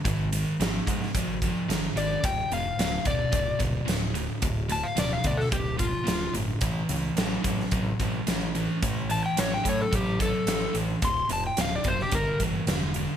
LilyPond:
<<
  \new Staff \with { instrumentName = "Electric slide guitar" } { \time 4/4 \key a \phrygian \tempo 4 = 109 r2. r8 d''8 | g''8 f''4 d''4 r4. | r8 a''16 f''16 d''16 f''16 d''16 a'16 g'8 f'4 r8 | r1 |
r8 a''16 g''16 cis''16 g''16 cis''16 a'16 g'8 a'4 r8 | c'''8 a''16 g''16 f''16 d''16 c''16 g'16 bes'8 r4. | }
  \new Staff \with { instrumentName = "Distorted electric guitar" } { \clef bass \time 4/4 \key a \phrygian <gis, dis>8 <gis, dis>8 <gis, f>8 <gis, f>8 <gis, f>8 <gis, f>8 <gis, dis>8 <gis, dis>8 | <d, a,>8 <d, a,>8 <d, b,>8 <d, b,>8 <d, b,>8 <d, b,>8 <d, a,>8 <d, a,>8 | <d, a,>8 <d, a,>8 <d, b,>8 <d, b,>8 <d, b,>8 <d, b,>8 <d, a,>8 <d, a,>8 | <a, e>8 <a, e>8 <a, fis>8 <a, fis>8 <a, fis>8 <a, fis>8 <a, e>8 <a, e>8 |
<a, e>8 <a, e>8 <a, fis>8 <a, fis>8 <a, fis>8 <a, fis>8 <a, e>8 <a, e>8 | <d, a,>8 <d, a,>8 <d, b,>8 <d, b,>8 <g, d>8 <g, e>8 <g, d>8 <g, d>8 | }
  \new Staff \with { instrumentName = "Picked electric bass" } { \clef bass \time 4/4 \key a \phrygian gis,,4 gis,,8 gis,8 gis,,4 gis,,8 gis,,8 | d,,8 f,,8 d,,8 d,,8 d,,8 d,,8 d,,4 | d,,4 d,,8 d,8 d,,4 d,,8 g,,8 | a,,8 cis,8 a,,8 a,,8 a,,8 a,,8 a,,4 |
a,,4 a,,8 a,8 a,,4 a,,8 a,,8 | d,,8 f,,8 d,,8 fis,,8 g,,8 g,,8 e,,4 | }
  \new DrumStaff \with { instrumentName = "Drums" } \drummode { \time 4/4 <hh bd>8 hh8 <hh sn>8 <hh bd>16 sn16 <hh bd>8 <hh bd>8 <hh sn>8 hh8 | <hh bd>8 hh8 <hh sn>8 <hh bd>8 <hh bd>8 <hh bd>8 <hh sn>8 hh8 | <hh bd>8 hh8 <hh sn>8 <hh bd>16 sn16 <hh bd>8 <hh bd>8 <hh sn>8 hh8 | <hh bd>8 hh8 <hh sn>8 <hh bd>16 sn16 <hh bd>8 <hh bd>8 <hh sn>8 hh8 |
<hh bd>8 hh8 <hh sn>8 <hh bd>8 <hh bd>8 <hh bd>8 <hh sn>8 hh8 | <hh bd>8 hh8 <hh sn>8 <hh bd>16 sn16 <hh bd>8 <hh bd>8 <hh sn>8 hh8 | }
>>